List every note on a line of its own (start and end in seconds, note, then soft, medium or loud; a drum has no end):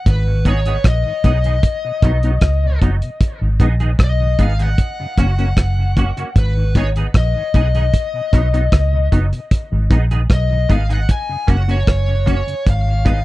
0.00 0.13 F#5 loud
0.06 0.76 G#1 loud
0.06 0.44 B4 medium
0.06 kick loud
0.06 closed hi-hat medium
0.27 0.34 G#2 medium
0.27 0.34 D#3 medium
0.45 0.54 G#3 medium
0.45 0.58 B3 medium
0.45 0.54 B3 medium
0.45 0.58 D#4 loud
0.45 0.54 D#4 medium
0.45 0.59 G#4 loud
0.45 0.84 C#5 medium
0.45 kick medium
0.45 closed hi-hat medium
0.66 0.73 G#2 medium
0.66 0.73 D#3 medium
0.66 0.76 B3 medium
0.66 0.76 D#4 medium
0.66 0.75 G#4 medium
0.66 closed hi-hat soft
0.84 1.02 A#1 medium
0.84 2.79 D#5 medium
0.84 kick loud
0.84 cross-stick loud
0.84 closed hi-hat medium
1.05 1.13 G#2 medium
1.05 1.13 D#3 medium
1.24 1.59 B1 medium
1.24 1.32 G#3 medium
1.24 1.37 B3 medium
1.24 1.32 B3 medium
1.24 1.33 D#4 medium
1.24 1.37 D#4 medium
1.24 1.37 G#4 medium
1.24 kick medium
1.24 closed hi-hat medium
1.44 1.52 G#2 soft
1.44 1.52 D#3 medium
1.44 1.55 B3 soft
1.44 1.54 D#4 medium
1.44 1.54 G#4 medium
1.44 closed hi-hat soft
1.63 kick loud
1.63 closed hi-hat medium
1.85 1.92 B2 medium
2.02 2.37 B1 medium
2.02 2.11 F#3 medium
2.02 2.16 F#3 medium
2.02 2.12 B3 medium
2.02 2.16 B3 medium
2.02 2.12 D#4 medium
2.02 2.16 D#4 medium
2.02 kick medium
2.02 cross-stick medium
2.02 closed hi-hat medium
2.23 2.34 F#3 soft
2.23 2.31 B3 medium
2.23 2.33 B3 medium
2.23 2.31 D#4 medium
2.23 2.33 D#4 medium
2.23 closed hi-hat soft
2.41 2.77 C#2 medium
2.41 kick loud
2.41 cross-stick loud
2.41 closed hi-hat medium
2.64 2.71 B2 medium
2.82 3.00 F#1 medium
2.82 2.94 F#3 medium
2.82 2.90 F#3 medium
2.82 2.94 B3 medium
2.82 2.90 B3 medium
2.82 2.90 D#4 medium
2.82 2.95 D#4 medium
2.82 kick medium
2.82 closed hi-hat medium
3.02 3.10 B2 medium
3.02 closed hi-hat medium
3.21 kick loud
3.21 closed hi-hat medium
3.41 3.58 G#1 medium
3.41 3.49 G#2 medium
3.41 3.49 D#3 medium
3.60 3.95 A#1 medium
3.60 3.68 G#3 medium
3.60 3.73 B3 medium
3.60 3.69 B3 medium
3.60 3.69 D#4 medium
3.60 3.73 D#4 medium
3.60 3.74 G#4 medium
3.60 kick medium
3.60 closed hi-hat medium
3.80 3.88 G#2 medium
3.80 3.88 D#3 medium
3.80 3.90 B3 medium
3.80 3.90 D#4 medium
3.80 3.90 G#4 medium
3.80 closed hi-hat soft
3.99 4.34 B1 medium
3.99 kick loud
3.99 cross-stick loud
3.99 closed hi-hat medium
4.04 4.39 D#5 medium
4.20 4.28 G#2 medium
4.20 4.28 D#3 medium
4.39 4.74 G#1 medium
4.39 4.47 G#3 medium
4.39 4.51 B3 medium
4.39 4.47 B3 medium
4.39 4.48 D#4 medium
4.39 4.52 D#4 medium
4.39 4.52 G#4 medium
4.39 4.62 F5 medium
4.39 kick medium
4.39 closed hi-hat medium
4.59 4.67 G#2 medium
4.59 4.67 D#3 medium
4.59 4.69 B3 soft
4.59 4.69 D#4 medium
4.59 4.68 G#4 medium
4.59 6.43 F#5 loud
4.59 closed hi-hat medium
4.78 kick loud
4.78 closed hi-hat medium
4.99 5.07 F#2 medium
4.99 5.07 C#3 medium
5.18 5.53 F#1 medium
5.18 5.26 F#3 medium
5.18 5.30 A#3 medium
5.18 5.26 A#3 medium
5.18 5.26 C#4 medium
5.18 5.31 C#4 medium
5.18 5.31 F#4 medium
5.18 kick medium
5.18 cross-stick medium
5.18 closed hi-hat medium
5.38 5.46 A#3 medium
5.38 5.48 A#3 soft
5.38 5.46 C#4 medium
5.38 5.48 C#4 medium
5.38 5.47 F#4 medium
5.38 closed hi-hat soft
5.57 6.10 F#1 medium
5.57 kick loud
5.57 cross-stick loud
5.57 closed hi-hat medium
5.78 5.86 F#2 medium
5.78 5.85 C#3 medium
5.97 6.05 F#3 medium
5.97 6.05 A#3 medium
5.97 6.09 A#3 medium
5.97 6.05 C#4 medium
5.97 6.10 C#4 medium
5.97 6.10 F#4 medium
5.97 kick medium
5.97 closed hi-hat medium
6.17 6.25 F#2 medium
6.17 6.24 C#3 medium
6.17 6.27 A#3 medium
6.17 6.27 C#4 medium
6.17 6.26 F#4 medium
6.17 closed hi-hat medium
6.36 7.06 G#1 loud
6.36 6.78 B4 medium
6.36 kick loud
6.36 closed hi-hat medium
6.57 6.64 G#2 medium
6.57 6.64 D#3 medium
6.75 6.83 G#3 medium
6.75 6.83 B3 medium
6.75 6.88 B3 medium
6.75 6.84 D#4 medium
6.75 6.89 D#4 medium
6.75 6.89 G#4 medium
6.75 6.87 C#5 medium
6.75 kick medium
6.75 closed hi-hat medium
6.96 7.03 G#2 medium
6.96 7.03 D#3 medium
6.96 7.06 B3 soft
6.96 7.06 D#4 medium
6.96 7.05 G#4 medium
6.96 closed hi-hat soft
7.14 7.33 A#1 medium
7.14 9.09 D#5 medium
7.14 kick loud
7.14 cross-stick loud
7.14 closed hi-hat medium
7.36 7.43 G#2 medium
7.36 7.43 D#3 medium
7.54 7.89 B1 medium
7.54 7.62 G#3 medium
7.54 7.67 B3 medium
7.54 7.62 B3 medium
7.54 7.62 D#4 medium
7.54 7.67 D#4 medium
7.54 7.67 G#4 loud
7.54 kick medium
7.54 closed hi-hat medium
7.75 7.82 G#2 medium
7.75 7.82 D#3 medium
7.75 7.85 B3 soft
7.75 7.84 D#4 medium
7.75 7.84 G#4 medium
7.75 closed hi-hat medium
7.94 kick loud
7.94 closed hi-hat medium
8.14 8.21 B2 medium
8.32 8.68 B1 medium
8.32 8.41 F#3 medium
8.32 8.45 F#3 medium
8.32 8.41 B3 medium
8.32 8.46 B3 loud
8.32 8.41 D#4 medium
8.32 8.46 D#4 medium
8.32 kick medium
8.32 cross-stick medium
8.32 closed hi-hat medium
8.53 8.63 F#3 medium
8.53 8.61 B3 medium
8.53 8.63 B3 medium
8.53 8.62 D#4 medium
8.53 8.61 D#4 medium
8.53 closed hi-hat soft
8.72 9.07 C#2 medium
8.72 kick loud
8.72 cross-stick loud
8.72 closed hi-hat medium
8.93 9.00 B2 medium
9.12 9.30 F#1 medium
9.12 9.20 F#3 medium
9.12 9.24 F#3 medium
9.12 9.20 B3 medium
9.12 9.25 B3 medium
9.12 9.20 D#4 medium
9.12 9.25 D#4 medium
9.12 kick medium
9.12 closed hi-hat medium
9.33 9.40 B2 medium
9.33 closed hi-hat soft
9.51 kick loud
9.51 closed hi-hat loud
9.72 9.89 G#1 medium
9.72 9.79 G#2 medium
9.72 9.79 D#3 medium
9.90 10.26 A#1 medium
9.90 9.98 G#3 medium
9.90 9.99 B3 medium
9.90 10.03 B3 medium
9.90 9.99 D#4 medium
9.90 10.04 D#4 medium
9.90 10.04 G#4 medium
9.90 kick medium
9.90 closed hi-hat medium
10.11 10.19 G#2 medium
10.11 10.19 D#3 medium
10.11 10.21 B3 medium
10.11 10.20 D#4 medium
10.11 10.20 G#4 medium
10.11 closed hi-hat soft
10.30 10.65 B1 loud
10.30 10.72 D#5 medium
10.30 kick loud
10.30 cross-stick loud
10.30 closed hi-hat medium
10.51 10.58 G#2 medium
10.51 10.58 D#3 medium
10.69 11.05 G#1 medium
10.69 10.78 G#3 medium
10.69 10.82 B3 medium
10.69 10.78 B3 medium
10.69 10.82 D#4 medium
10.69 10.78 D#4 medium
10.69 10.82 G#4 medium
10.69 10.92 F5 medium
10.69 kick medium
10.69 closed hi-hat medium
10.89 10.97 G#2 medium
10.89 10.97 D#3 medium
10.89 10.99 B3 soft
10.89 10.99 D#4 medium
10.89 10.99 G#4 medium
10.89 11.11 F#5 loud
10.89 closed hi-hat medium
11.09 11.50 G#5 loud
11.09 kick loud
11.09 closed hi-hat medium
11.29 11.37 F#2 medium
11.29 11.37 C#3 medium
11.47 11.83 F#1 medium
11.47 11.56 F#3 medium
11.47 11.60 A#3 medium
11.47 11.56 A#3 medium
11.47 11.61 C#4 medium
11.47 11.56 C#4 medium
11.47 11.61 F#4 medium
11.47 11.70 F#5 loud
11.47 kick medium
11.47 closed hi-hat medium
11.68 11.76 A#3 medium
11.68 11.78 A#3 medium
11.68 11.76 C#4 medium
11.68 11.78 C#4 medium
11.68 11.78 F#4 medium
11.68 12.69 C#5 medium
11.68 closed hi-hat soft
11.87 12.41 F#1 medium
11.87 kick loud
11.87 cross-stick loud
11.87 closed hi-hat medium
12.08 12.16 F#2 medium
12.08 12.16 C#3 medium
12.26 12.35 F#3 medium
12.26 12.39 A#3 medium
12.26 12.35 A#3 medium
12.26 12.39 C#4 medium
12.26 12.35 C#4 medium
12.26 12.40 F#4 medium
12.26 kick medium
12.26 closed hi-hat medium
12.47 12.55 F#2 medium
12.47 12.55 C#3 medium
12.47 closed hi-hat soft
12.67 13.25 G#1 loud
12.67 13.25 F5 loud
12.67 kick loud
12.67 closed hi-hat medium
12.86 12.94 G#2 medium
12.86 12.94 D#3 medium
13.05 13.13 G#3 medium
13.05 13.18 B3 medium
13.05 13.14 B3 medium
13.05 13.14 D#4 medium
13.05 13.18 D#4 medium
13.05 13.18 G#4 medium
13.05 kick medium
13.05 closed hi-hat medium